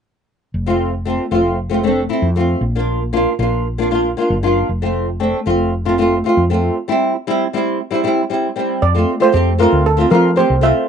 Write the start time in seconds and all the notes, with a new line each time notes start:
0.54 F1
0.66 A3 C4 F4
1.05 A3 C4 F4
1.31 F1 A3 C4 F4
1.70 A3 C4 F4
1.83 A3 C4 D4
2.09 A3 C4 E4
2.22 F2
2.36 A3 C4 F4
2.61 A#1
2.75 A#3 D4 F4
3.13 A#3 D4 F4
3.39 A#1 A#3 D4 F4
3.78 A#3 D4 F4
3.91 A#3 D4 F4
4.17 A#3 D4 F4
4.30 F#1
4.43 A#3 D4 F4
4.69 F1
4.82 A3 C4 F4
5.20 A3 C4 D4
5.46 F1 A3 C4 F4
5.85 A3 C4 F4
5.98 A3 C4 F4
6.24 A3 C4 F4
6.37 F2
6.50 A3 C4 F4
6.88 G3 C4 E4
7.27 G3 C4 E4
7.53 G3 C4 E4
7.91 G3 C4 E4
8.04 G3 C4 E4
8.30 G3 C4 E4
8.56 G3 C4 E4
8.82 F2 D5
8.94 A3 C4 F4
9.20 A3 C4 F4 C5
9.32 F2 A3 C4 G4
9.58 A3 C4 F4 A#4
9.73 D2
9.86 A4
9.97 A3 C4 F4
10.10 F3 A3 C4 F4 A#4
10.36 A3 C4 G4 C5
10.50 C2
10.61 A3 C4 F4 E5